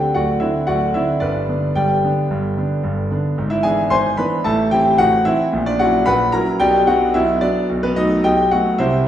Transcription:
0.00 0.11 D3 soft
0.00 0.12 C4 soft
0.00 0.12 D4 soft
0.00 0.12 G4 medium
0.00 0.14 G5 medium
0.14 0.41 D1 soft
0.14 0.41 D2 soft
0.14 0.40 F#4 medium
0.14 0.40 D5 medium
0.14 0.41 F#5 medium
0.40 0.65 D3 soft
0.40 0.65 C4 soft
0.40 0.65 D4 soft
0.40 0.66 E4 medium
0.40 0.67 E5 medium
0.67 0.93 D1 medium
0.67 0.94 D2 soft
0.67 0.93 F#4 medium
0.67 0.93 D5 medium
0.67 0.94 F#5 medium
0.94 1.19 D3 soft
0.94 1.19 C4 soft
0.94 1.19 D4 soft
0.94 1.20 E4 medium
0.94 1.21 E5 medium
1.20 1.48 G1 soft
1.20 1.48 G2 soft
1.20 1.48 D4 medium
1.20 1.73 B4 medium
1.20 1.75 D5 medium
1.49 1.74 D3 soft
1.49 1.74 B3 soft
1.49 1.74 D4 soft
1.75 2.02 G1 soft
1.75 2.03 G2 soft
1.75 3.06 G4 medium
1.75 3.06 D5 medium
1.75 3.10 G5 medium
2.04 2.28 D3 soft
2.04 2.28 B3 soft
2.04 2.28 D4 soft
2.30 2.56 G1 medium
2.30 2.56 G2 medium
2.57 2.81 D3 soft
2.57 2.81 B3 soft
2.57 2.82 D4 soft
2.84 3.10 G1 medium
2.84 3.10 G2 medium
3.11 3.35 D3 soft
3.11 3.35 B3 soft
3.11 3.35 D4 soft
3.38 3.64 G#1 medium
3.38 3.64 G#2 medium
3.50 3.63 E4 medium
3.50 3.64 E5 medium
3.63 3.88 E3 soft
3.63 3.88 B3 soft
3.63 3.88 D4 medium
3.63 3.89 G#4 medium
3.63 3.90 G#5 medium
3.90 4.17 G#1 medium
3.90 4.17 G#2 medium
3.90 4.16 C5 medium
3.90 4.16 G#5 medium
3.90 4.17 C6 loud
4.17 4.42 E3 soft
4.17 4.42 B3 soft
4.17 4.43 D4 medium
4.17 4.43 B4 medium
4.17 4.44 B5 medium
4.44 4.71 A1 medium
4.44 4.71 A2 medium
4.44 4.70 A4 medium
4.44 4.70 E5 medium
4.44 4.71 A5 medium
4.71 4.96 E3 medium
4.71 4.96 C4 soft
4.71 4.96 E4 medium
4.71 4.97 G4 medium
4.71 4.98 G5 loud
4.98 5.25 A1 medium
4.98 5.25 A2 medium
4.98 5.24 F#4 medium
4.98 5.25 F#5 loud
5.25 5.50 E3 medium
5.25 5.50 C4 medium
5.25 5.51 E4 medium
5.25 5.52 E5 loud
5.53 5.79 A#1 medium
5.53 5.79 A#2 medium
5.66 5.79 D4 medium
5.66 5.80 D5 loud
5.79 6.04 F#3 soft
5.79 6.04 C#4 medium
5.79 6.04 E4 medium
5.79 6.05 F#4 medium
5.79 6.05 F#5 loud
6.06 6.33 A#1 medium
6.06 6.33 A#2 medium
6.06 6.32 B4 medium
6.06 6.32 F#5 medium
6.06 6.33 B5 loud
6.32 6.58 F#3 medium
6.32 6.58 C#4 soft
6.32 6.58 E4 medium
6.32 6.59 A#4 medium
6.32 6.60 A#5 medium
6.60 6.87 B1 medium
6.60 6.87 B2 medium
6.60 6.86 G4 medium
6.60 6.86 D5 medium
6.60 6.87 G5 loud
6.87 7.12 F#3 medium
6.87 7.12 B3 medium
6.87 7.13 D4 medium
6.87 7.13 F#4 medium
6.87 7.15 F#5 medium
7.14 7.42 B1 medium
7.14 7.42 B2 medium
7.14 7.41 E4 medium
7.14 7.42 E5 medium
7.41 7.67 F#3 soft
7.41 7.67 B3 medium
7.41 7.68 D4 medium
7.41 7.69 D5 loud
7.69 7.96 B1 medium
7.69 7.96 B2 medium
7.83 7.96 B3 medium
7.83 7.97 B4 medium
7.96 8.21 F#3 soft
7.96 8.22 A3 soft
7.96 8.22 B3 medium
7.96 8.22 D#4 medium
7.96 8.23 D#5 medium
8.24 8.51 B1 medium
8.24 8.51 B2 medium
8.24 8.50 G4 medium
8.24 8.50 D#5 medium
8.24 8.51 G5 loud
8.51 8.76 F#3 medium
8.51 8.77 A3 soft
8.51 8.77 B3 soft
8.51 8.77 F#4 medium
8.51 8.79 F#5 medium
8.79 9.06 C2 medium
8.79 9.05 C3 medium
8.79 9.05 E4 medium
8.79 9.05 C5 medium
8.79 9.06 E5 medium

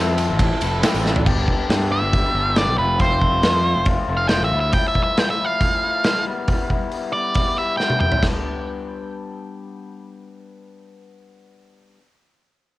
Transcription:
0.00 0.30 F2 loud
0.00 0.16 F3 medium
0.00 0.81 C4 medium
0.00 0.82 C4 medium
0.00 0.61 E4 medium
0.00 0.59 A4 loud
0.17 1.03 F3 medium
0.17 ride medium
0.17 tambourine medium
0.29 0.49 A1 medium
0.39 1.26 E4 medium
0.39 kick loud
0.39 ride medium
0.39 tambourine soft
0.60 0.82 F1 medium
0.60 0.82 E4 medium
0.60 0.83 A4 medium
0.60 1.27 A4 medium
0.60 ride medium
0.60 tambourine medium
0.72 tambourine soft
0.82 1.24 C4 medium
0.82 1.27 C4 medium
0.82 1.05 E4 medium
0.82 1.03 A4 medium
0.82 snare loud
0.82 ride medium
0.82 tambourine medium
0.94 1.25 A1 medium
0.94 tambourine medium
1.04 1.26 F3 medium
1.04 1.26 E4 medium
1.04 1.25 A4 medium
1.04 snare medium
1.16 floor tom medium
1.26 1.47 G1 medium
1.26 1.46 B3 medium
1.26 1.46 D4 medium
1.26 1.47 G4 loud
1.26 kick loud
1.26 crash medium
1.47 1.67 B3 medium
1.47 1.67 D4 medium
1.47 1.68 G4 medium
1.47 kick medium
1.68 2.00 G2 medium
1.68 1.90 B3 medium
1.68 1.90 D4 medium
1.68 1.91 G4 medium
1.68 snare loud
1.68 open hi-hat soft
1.91 2.13 B3 medium
1.91 2.13 D4 medium
1.91 2.13 G4 medium
1.91 2.55 E5 medium
2.02 2.23 G1 medium
2.13 2.33 B3 medium
2.13 2.34 D4 medium
2.13 2.34 G4 medium
2.13 kick loud
2.13 open hi-hat soft
2.34 2.65 G1 medium
2.34 2.55 B3 medium
2.34 2.55 D4 medium
2.34 2.56 G4 medium
2.56 2.77 B3 medium
2.56 2.77 D4 medium
2.56 2.77 G4 medium
2.56 2.78 D5 medium
2.56 snare loud
2.56 open hi-hat soft
2.67 2.78 B1 medium
2.77 3.40 F1 medium
2.77 2.99 F3 medium
2.77 2.99 A3 medium
2.77 2.99 C4 medium
2.77 2.99 F4 medium
2.77 2.99 B4 medium
2.99 3.20 F3 medium
2.99 3.20 A3 medium
2.99 3.20 C4 loud
2.99 3.21 F4 medium
2.99 3.85 C5 medium
2.99 kick loud
2.99 open hi-hat soft
3.20 3.41 F3 medium
3.20 3.42 A3 medium
3.20 3.42 C4 medium
3.20 3.43 F4 medium
3.20 kick medium
3.42 3.74 F2 medium
3.42 3.63 F3 medium
3.42 3.63 A3 medium
3.42 3.63 C4 medium
3.42 3.64 F4 medium
3.42 snare loud
3.42 open hi-hat soft
3.64 3.84 F3 medium
3.64 3.84 A3 medium
3.64 3.85 C4 medium
3.64 3.85 F4 medium
3.76 3.97 F1 medium
3.85 4.06 F3 medium
3.85 4.06 A3 medium
3.85 4.06 C4 medium
3.85 4.07 F4 loud
3.85 kick loud
3.85 open hi-hat soft
4.07 4.40 F1 medium
4.07 4.28 F3 medium
4.07 4.28 A3 medium
4.07 4.29 C4 medium
4.07 4.29 F4 medium
4.17 4.28 F5 medium
4.28 4.50 F3 medium
4.28 4.51 A3 medium
4.28 4.51 C4 medium
4.28 4.51 F4 medium
4.28 4.43 G5 medium
4.28 snare loud
4.28 open hi-hat soft
4.41 4.51 A1 medium
4.41 4.59 E5 medium
4.52 4.73 D2 medium
4.52 4.72 F3 medium
4.52 4.72 A3 medium
4.52 4.74 E4 medium
4.61 4.73 E5 medium
4.73 4.94 F3 medium
4.73 4.95 A3 medium
4.73 4.96 E4 loud
4.73 4.88 G5 medium
4.73 kick loud
4.73 open hi-hat soft
4.88 5.03 E5 medium
4.95 5.16 F3 medium
4.95 5.16 A3 medium
4.95 5.18 E4 medium
4.95 kick medium
5.04 5.18 E5 medium
5.17 5.39 F3 medium
5.17 5.40 A3 medium
5.17 5.41 E4 medium
5.17 5.30 G5 medium
5.17 snare loud
5.17 open hi-hat soft
5.30 5.45 E5 medium
5.40 5.60 F3 medium
5.40 5.61 A3 medium
5.40 5.61 E4 medium
5.45 6.23 F5 medium
5.61 5.82 F3 medium
5.61 5.83 A3 medium
5.61 5.83 E4 medium
5.61 kick medium
5.61 open hi-hat medium
5.84 6.04 F3 medium
5.84 6.04 A3 medium
5.84 6.04 E4 medium
6.04 6.25 F3 medium
6.04 6.25 A3 medium
6.04 6.26 E4 medium
6.04 snare loud
6.04 open hi-hat soft
6.26 6.48 G3 medium
6.26 6.48 B3 medium
6.26 6.49 E4 medium
6.48 6.69 G3 medium
6.48 6.69 B3 medium
6.48 6.70 E4 medium
6.48 kick loud
6.48 open hi-hat soft
6.70 6.91 G3 medium
6.70 6.91 B3 medium
6.70 6.91 E4 medium
6.70 kick medium
6.91 7.12 G3 medium
6.91 7.13 B3 medium
6.91 7.13 E4 medium
6.91 open hi-hat soft
7.12 7.33 G3 medium
7.12 7.34 B3 medium
7.12 7.34 E4 medium
7.12 7.56 D5 medium
7.34 7.55 G3 medium
7.34 7.55 B3 medium
7.34 7.56 E4 medium
7.34 kick medium
7.34 open hi-hat soft
7.56 7.77 G3 medium
7.56 7.77 B3 medium
7.56 7.78 E4 medium
7.56 7.77 E5 medium
7.77 7.98 G3 medium
7.77 7.99 B3 medium
7.77 7.99 E4 medium
7.77 7.99 G5 medium
7.77 snare soft
7.90 high tom soft
7.99 8.20 G3 medium
7.99 8.21 B3 medium
7.99 8.22 E4 medium
7.99 8.22 G5 medium
7.99 mid tom medium
8.12 floor tom medium
8.21 11.98 G3 medium
8.21 12.00 B3 medium
8.21 12.02 D4 medium
8.21 kick medium
8.21 snare medium
8.21 splash medium

